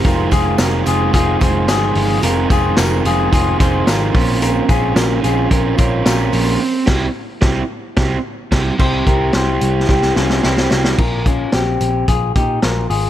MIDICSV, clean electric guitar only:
0, 0, Header, 1, 2, 480
1, 0, Start_track
1, 0, Key_signature, -4, "minor"
1, 0, Tempo, 546946
1, 43, Time_signature, 4, 2, 24, 8
1, 11496, End_track
2, 0, Start_track
2, 0, Title_t, "Clean electric guitar"
2, 0, Program_c, 0, 27
2, 48, Note_on_c, 0, 70, 92
2, 52, Note_on_c, 0, 65, 74
2, 282, Note_off_c, 0, 70, 0
2, 283, Note_off_c, 0, 65, 0
2, 286, Note_on_c, 0, 68, 90
2, 293, Note_on_c, 0, 65, 68
2, 520, Note_off_c, 0, 68, 0
2, 521, Note_off_c, 0, 65, 0
2, 524, Note_on_c, 0, 70, 81
2, 532, Note_on_c, 0, 65, 63
2, 760, Note_off_c, 0, 70, 0
2, 761, Note_off_c, 0, 65, 0
2, 764, Note_on_c, 0, 68, 77
2, 772, Note_on_c, 0, 65, 61
2, 993, Note_off_c, 0, 68, 0
2, 1002, Note_off_c, 0, 65, 0
2, 1003, Note_on_c, 0, 68, 85
2, 1012, Note_on_c, 0, 65, 73
2, 1242, Note_off_c, 0, 68, 0
2, 1245, Note_on_c, 0, 72, 79
2, 1246, Note_off_c, 0, 65, 0
2, 1257, Note_on_c, 0, 68, 59
2, 1470, Note_off_c, 0, 68, 0
2, 1477, Note_off_c, 0, 72, 0
2, 1480, Note_on_c, 0, 68, 92
2, 1488, Note_on_c, 0, 65, 69
2, 1931, Note_off_c, 0, 68, 0
2, 1935, Note_off_c, 0, 65, 0
2, 1963, Note_on_c, 0, 70, 101
2, 1968, Note_on_c, 0, 65, 77
2, 2200, Note_off_c, 0, 65, 0
2, 2202, Note_off_c, 0, 70, 0
2, 2205, Note_on_c, 0, 68, 85
2, 2210, Note_on_c, 0, 65, 73
2, 2442, Note_off_c, 0, 68, 0
2, 2445, Note_off_c, 0, 65, 0
2, 2447, Note_on_c, 0, 70, 84
2, 2454, Note_on_c, 0, 65, 67
2, 2680, Note_off_c, 0, 65, 0
2, 2683, Note_off_c, 0, 70, 0
2, 2687, Note_on_c, 0, 68, 85
2, 2691, Note_on_c, 0, 65, 66
2, 2915, Note_off_c, 0, 68, 0
2, 2922, Note_off_c, 0, 65, 0
2, 2926, Note_on_c, 0, 68, 84
2, 2933, Note_on_c, 0, 65, 65
2, 3157, Note_off_c, 0, 68, 0
2, 3160, Note_on_c, 0, 72, 87
2, 3166, Note_off_c, 0, 65, 0
2, 3170, Note_on_c, 0, 68, 63
2, 3400, Note_off_c, 0, 72, 0
2, 3403, Note_on_c, 0, 70, 91
2, 3404, Note_off_c, 0, 68, 0
2, 3413, Note_on_c, 0, 65, 67
2, 3852, Note_off_c, 0, 70, 0
2, 3857, Note_off_c, 0, 65, 0
2, 3882, Note_on_c, 0, 70, 93
2, 3888, Note_on_c, 0, 65, 80
2, 4114, Note_off_c, 0, 65, 0
2, 4119, Note_on_c, 0, 68, 95
2, 4120, Note_off_c, 0, 70, 0
2, 4124, Note_on_c, 0, 65, 68
2, 4353, Note_off_c, 0, 68, 0
2, 4354, Note_off_c, 0, 65, 0
2, 4357, Note_on_c, 0, 70, 80
2, 4364, Note_on_c, 0, 65, 65
2, 4592, Note_off_c, 0, 70, 0
2, 4595, Note_off_c, 0, 65, 0
2, 4596, Note_on_c, 0, 68, 76
2, 4605, Note_on_c, 0, 65, 61
2, 4836, Note_off_c, 0, 65, 0
2, 4836, Note_off_c, 0, 68, 0
2, 4839, Note_on_c, 0, 70, 90
2, 4846, Note_on_c, 0, 65, 68
2, 5072, Note_off_c, 0, 70, 0
2, 5078, Note_on_c, 0, 73, 78
2, 5082, Note_off_c, 0, 65, 0
2, 5082, Note_on_c, 0, 70, 63
2, 5311, Note_off_c, 0, 70, 0
2, 5318, Note_off_c, 0, 73, 0
2, 5322, Note_on_c, 0, 70, 89
2, 5328, Note_on_c, 0, 65, 73
2, 5771, Note_off_c, 0, 70, 0
2, 5774, Note_off_c, 0, 65, 0
2, 7725, Note_on_c, 0, 72, 105
2, 7731, Note_on_c, 0, 67, 76
2, 7960, Note_off_c, 0, 67, 0
2, 7962, Note_off_c, 0, 72, 0
2, 7966, Note_on_c, 0, 70, 79
2, 7971, Note_on_c, 0, 67, 62
2, 8201, Note_off_c, 0, 67, 0
2, 8203, Note_off_c, 0, 70, 0
2, 8207, Note_on_c, 0, 72, 79
2, 8212, Note_on_c, 0, 67, 62
2, 8655, Note_off_c, 0, 72, 0
2, 8658, Note_off_c, 0, 67, 0
2, 8681, Note_on_c, 0, 67, 82
2, 8690, Note_on_c, 0, 64, 62
2, 8919, Note_off_c, 0, 67, 0
2, 8923, Note_on_c, 0, 65, 73
2, 8925, Note_off_c, 0, 64, 0
2, 8931, Note_on_c, 0, 61, 57
2, 9162, Note_off_c, 0, 65, 0
2, 9166, Note_off_c, 0, 61, 0
2, 9168, Note_on_c, 0, 64, 73
2, 9174, Note_on_c, 0, 60, 57
2, 9617, Note_off_c, 0, 64, 0
2, 9620, Note_off_c, 0, 60, 0
2, 9647, Note_on_c, 0, 70, 84
2, 9653, Note_on_c, 0, 65, 66
2, 9868, Note_off_c, 0, 65, 0
2, 9879, Note_on_c, 0, 65, 73
2, 9885, Note_off_c, 0, 70, 0
2, 9888, Note_on_c, 0, 61, 59
2, 10118, Note_off_c, 0, 65, 0
2, 10121, Note_on_c, 0, 67, 65
2, 10125, Note_off_c, 0, 61, 0
2, 10130, Note_on_c, 0, 60, 52
2, 10574, Note_off_c, 0, 67, 0
2, 10578, Note_off_c, 0, 60, 0
2, 10603, Note_on_c, 0, 68, 76
2, 10610, Note_on_c, 0, 65, 60
2, 10841, Note_off_c, 0, 68, 0
2, 10844, Note_off_c, 0, 65, 0
2, 10844, Note_on_c, 0, 67, 72
2, 10848, Note_on_c, 0, 63, 57
2, 11077, Note_off_c, 0, 67, 0
2, 11080, Note_on_c, 0, 70, 73
2, 11086, Note_off_c, 0, 63, 0
2, 11089, Note_on_c, 0, 65, 59
2, 11313, Note_off_c, 0, 65, 0
2, 11316, Note_off_c, 0, 70, 0
2, 11320, Note_on_c, 0, 68, 68
2, 11324, Note_on_c, 0, 65, 59
2, 11496, Note_off_c, 0, 65, 0
2, 11496, Note_off_c, 0, 68, 0
2, 11496, End_track
0, 0, End_of_file